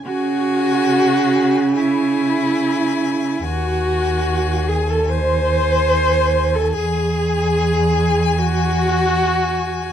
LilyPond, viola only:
\new Staff \with { instrumentName = "Viola" } { \time 4/4 \key cis \minor \tempo 4 = 72 fis'2 e'2 | fis'4. gis'16 a'16 bis'4.~ bis'16 a'16 | gis'2 fis'2 | }